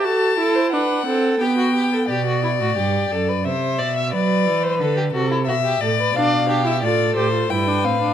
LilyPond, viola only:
\new Staff \with { instrumentName = "Viola" } { \time 3/4 \key g \major \tempo 4 = 88 fis'8 e'8 d'8 c'8 b4 | r2. | r2. | \key g \mixolydian d'8 d'16 e'16 f'8 g'16 f'16 e'16 d'16 c'16 d'16 | }